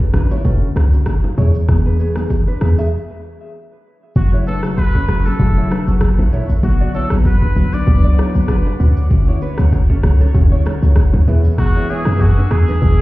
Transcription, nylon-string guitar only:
0.14 0.27 D4 medium
0.14 0.26 B4 medium
0.31 0.41 E4 medium
0.31 0.41 C#5 medium
0.45 0.67 C#4 medium
0.45 0.67 A4 medium
1.38 1.50 E4 medium
1.38 1.50 C#5 medium
1.86 1.96 D4 medium
1.86 1.95 B4 medium
2.00 2.12 B3 medium
2.00 2.12 G#4 medium
2.47 2.58 D4 medium
2.47 2.57 B4 medium
2.78 2.89 G#4 medium
2.78 2.88 E5 medium
4.33 4.43 E4 medium
4.33 4.43 C#5 medium
4.47 4.60 D4 medium
4.47 4.59 B4 medium
4.95 5.05 C#4 medium
4.95 5.05 A4 medium
5.26 5.36 C#4 medium
5.26 5.36 A4 medium
5.57 5.67 E4 medium
5.57 5.67 C#5 medium
5.71 5.83 D4 medium
5.71 5.83 B4 medium
6.33 6.45 E4 medium
6.33 6.45 C#5 medium
6.80 6.91 F#4 medium
6.80 6.90 D5 medium
6.94 7.07 E4 medium
6.94 7.06 C#5 medium
7.42 7.53 D4 medium
7.42 7.52 B4 medium
7.73 7.84 D4 medium
7.73 7.83 B4 medium
8.04 8.15 F#4 medium
8.04 8.14 D5 medium
8.18 8.31 E4 medium
8.18 8.30 C#5 medium
8.49 8.72 D4 medium
8.49 8.71 B4 medium
9.28 9.38 E4 medium
9.28 9.38 C#5 medium
9.42 9.54 D4 medium
9.42 9.54 B4 medium
9.90 10.00 C#4 medium
9.90 10.00 A4 medium
10.21 10.31 C#4 medium
10.21 10.31 A4 medium
10.52 10.62 E4 medium
10.52 10.62 C#5 medium
10.66 10.78 C#4 medium
10.66 10.78 A4 medium
11.28 11.40 E4 medium
11.28 11.40 B4 medium
11.76 11.86 E4 medium
11.76 11.85 C#5 medium
11.89 12.02 E4 medium
11.89 12.01 C#5 medium
12.37 12.48 D4 medium
12.37 12.47 B4 medium
12.68 12.78 D4 medium
12.68 12.78 B4 medium

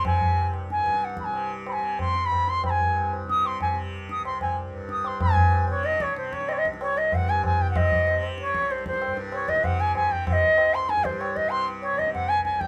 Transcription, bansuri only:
0.06 0.45 G#5 loud
0.71 1.05 G#5 medium
1.04 1.19 F#5 medium
1.19 1.25 B5 medium
1.24 1.49 G#5 medium
1.68 1.73 B5 medium
1.72 1.98 G#5 medium
2.00 2.26 C6 medium
2.25 2.50 B5 loud
2.48 2.64 C6 loud
2.65 2.70 B5 medium
2.69 3.09 G#5 loud
3.29 3.47 D#6 loud
3.46 3.61 C6 medium
3.61 3.76 G#5 medium
4.11 4.25 D#6 medium
4.25 4.40 C6 medium
4.41 4.56 G#5 medium
4.91 5.08 D#6 medium
5.06 5.20 C6 medium
5.21 5.65 G#5 medium
5.70 5.86 C#5 medium
5.85 6.03 D#5 loud
6.01 6.16 C#5 medium
6.17 6.34 C5 medium
6.32 6.49 C#5 medium
6.48 6.54 D#5 loud
6.52 6.59 C#5 medium
6.58 6.65 D#5 loud
6.81 6.98 C#5 loud
6.97 7.15 D#5 medium
7.14 7.30 F#5 loud
7.29 7.44 G#5 medium
7.45 7.62 G#5 medium
7.61 7.70 G5 loud
7.70 7.78 F#5 medium
7.76 8.23 D#5 loud
8.40 8.72 C#5 loud
8.71 8.86 C5 medium
8.87 9.15 C5 loud
9.33 9.50 C#5 loud
9.48 9.65 D#5 medium
9.64 9.81 F#5 loud
9.80 9.95 G#5 loud
9.95 10.12 G#5 medium
10.11 10.27 G5 loud
10.28 10.75 D#5 loud
10.28 10.33 F#5 loud
10.74 10.90 C6 loud
10.89 11.05 G#5 loud
11.04 11.21 C5 medium
11.19 11.37 C#5 medium
11.35 11.51 D#5 medium
11.49 11.66 C6 loud
11.82 11.99 C#5 loud
11.98 12.12 D#5 medium
12.13 12.30 F#5 loud
12.28 12.43 G#5 loud
12.44 12.61 G#5 medium
12.60 12.67 G5 loud

